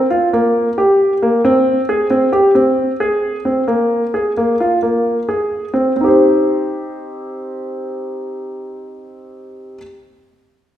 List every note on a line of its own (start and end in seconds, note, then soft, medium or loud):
0.10 0.28 F4 medium
0.33 0.68 A#3 medium
0.78 1.13 G4 medium
1.22 1.40 A#3 medium
1.45 1.79 C4 medium
1.89 2.06 G#4 medium
2.10 2.28 C4 medium
2.33 2.50 G4 medium
2.55 2.90 C4 medium
3.00 3.35 G#4 medium
3.45 3.63 C4 soft
3.68 4.03 A#3 medium
4.14 4.31 G#4 medium
4.37 4.54 A#3 medium
4.60 4.77 F4 medium
4.83 5.18 A#3 soft
5.29 5.64 G#4 medium
5.74 5.92 C4 medium
5.96 9.75 C4 soft
6.01 9.77 D#4 soft
6.01 9.79 G4 soft
6.08 9.81 C5 soft